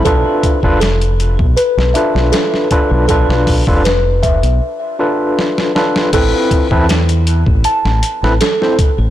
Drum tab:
CC |----------------|----------------|x---------------|
HH |x-x-xxx-x-x-x-x-|x-o-x-xx--------|x-x-xxx-x-x-x-x-|
SD |----o----o-ooo--|-o--o-------oooo|----o----o-ooo--|
BD |o-oo---o------o-|o-oo--o---------|o-oo---o------o-|